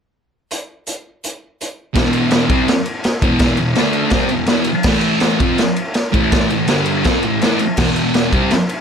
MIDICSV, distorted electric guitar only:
0, 0, Header, 1, 3, 480
1, 0, Start_track
1, 0, Key_signature, 1, "minor"
1, 0, Tempo, 362976
1, 678, Time_signature, 4, 2, 24, 8
1, 11646, End_track
2, 0, Start_track
2, 0, Title_t, "Distorted electric guitar"
2, 0, Program_c, 0, 30
2, 2571, Note_on_c, 0, 40, 95
2, 2582, Note_on_c, 0, 47, 91
2, 2601, Note_on_c, 0, 52, 94
2, 3284, Note_off_c, 0, 47, 0
2, 3289, Note_on_c, 0, 48, 73
2, 3294, Note_off_c, 0, 40, 0
2, 3301, Note_off_c, 0, 52, 0
2, 3307, Note_on_c, 0, 55, 93
2, 3315, Note_on_c, 0, 60, 99
2, 3533, Note_off_c, 0, 48, 0
2, 3542, Note_off_c, 0, 55, 0
2, 3546, Note_off_c, 0, 60, 0
2, 4258, Note_on_c, 0, 40, 80
2, 4269, Note_on_c, 0, 47, 97
2, 4279, Note_on_c, 0, 52, 108
2, 4737, Note_off_c, 0, 40, 0
2, 4742, Note_off_c, 0, 47, 0
2, 4747, Note_off_c, 0, 52, 0
2, 4755, Note_on_c, 0, 40, 80
2, 4758, Note_on_c, 0, 47, 72
2, 4944, Note_off_c, 0, 40, 0
2, 4946, Note_off_c, 0, 47, 0
2, 4972, Note_on_c, 0, 50, 95
2, 4989, Note_on_c, 0, 57, 98
2, 5003, Note_on_c, 0, 62, 114
2, 5445, Note_off_c, 0, 50, 0
2, 5450, Note_on_c, 0, 48, 90
2, 5460, Note_off_c, 0, 57, 0
2, 5465, Note_on_c, 0, 55, 91
2, 5468, Note_off_c, 0, 62, 0
2, 5473, Note_on_c, 0, 60, 100
2, 5693, Note_off_c, 0, 48, 0
2, 5700, Note_off_c, 0, 55, 0
2, 5701, Note_on_c, 0, 40, 65
2, 5704, Note_off_c, 0, 60, 0
2, 5711, Note_on_c, 0, 47, 65
2, 5897, Note_off_c, 0, 40, 0
2, 5902, Note_off_c, 0, 47, 0
2, 5931, Note_on_c, 0, 40, 79
2, 5942, Note_on_c, 0, 47, 96
2, 5960, Note_on_c, 0, 52, 99
2, 6169, Note_off_c, 0, 40, 0
2, 6179, Note_off_c, 0, 47, 0
2, 6188, Note_off_c, 0, 52, 0
2, 6435, Note_on_c, 0, 45, 95
2, 6449, Note_on_c, 0, 52, 103
2, 6458, Note_on_c, 0, 57, 116
2, 7140, Note_off_c, 0, 45, 0
2, 7145, Note_on_c, 0, 53, 85
2, 7152, Note_off_c, 0, 52, 0
2, 7157, Note_off_c, 0, 57, 0
2, 7159, Note_on_c, 0, 60, 101
2, 7175, Note_on_c, 0, 65, 95
2, 7381, Note_off_c, 0, 53, 0
2, 7387, Note_off_c, 0, 60, 0
2, 7395, Note_off_c, 0, 65, 0
2, 8105, Note_on_c, 0, 45, 90
2, 8121, Note_on_c, 0, 52, 98
2, 8136, Note_on_c, 0, 57, 105
2, 8581, Note_off_c, 0, 45, 0
2, 8590, Note_off_c, 0, 52, 0
2, 8597, Note_off_c, 0, 57, 0
2, 8621, Note_on_c, 0, 45, 69
2, 8630, Note_on_c, 0, 52, 82
2, 8799, Note_off_c, 0, 45, 0
2, 8803, Note_off_c, 0, 52, 0
2, 8838, Note_on_c, 0, 43, 100
2, 8853, Note_on_c, 0, 50, 100
2, 8861, Note_on_c, 0, 55, 99
2, 9309, Note_off_c, 0, 43, 0
2, 9316, Note_off_c, 0, 50, 0
2, 9320, Note_off_c, 0, 55, 0
2, 9324, Note_on_c, 0, 53, 79
2, 9335, Note_on_c, 0, 60, 94
2, 9339, Note_on_c, 0, 65, 100
2, 9552, Note_off_c, 0, 53, 0
2, 9558, Note_off_c, 0, 60, 0
2, 9559, Note_off_c, 0, 65, 0
2, 9578, Note_on_c, 0, 45, 61
2, 9585, Note_on_c, 0, 52, 68
2, 9758, Note_off_c, 0, 45, 0
2, 9762, Note_off_c, 0, 52, 0
2, 9827, Note_on_c, 0, 45, 80
2, 9835, Note_on_c, 0, 52, 95
2, 9853, Note_on_c, 0, 57, 81
2, 10044, Note_off_c, 0, 45, 0
2, 10048, Note_off_c, 0, 52, 0
2, 10057, Note_off_c, 0, 57, 0
2, 10290, Note_on_c, 0, 40, 109
2, 10299, Note_on_c, 0, 47, 102
2, 10309, Note_on_c, 0, 52, 102
2, 10997, Note_off_c, 0, 40, 0
2, 10998, Note_off_c, 0, 47, 0
2, 11004, Note_on_c, 0, 48, 82
2, 11006, Note_off_c, 0, 52, 0
2, 11011, Note_on_c, 0, 55, 97
2, 11021, Note_on_c, 0, 60, 106
2, 11234, Note_off_c, 0, 48, 0
2, 11238, Note_off_c, 0, 55, 0
2, 11243, Note_off_c, 0, 60, 0
2, 11646, End_track
3, 0, Start_track
3, 0, Title_t, "Muted distorted electric guitar strokes"
3, 6184, Note_on_c, 9, 29, 61
3, 6317, Note_off_c, 9, 29, 0
3, 10065, Note_on_c, 9, 29, 62
3, 10197, Note_off_c, 9, 29, 0
3, 11646, End_track
0, 0, End_of_file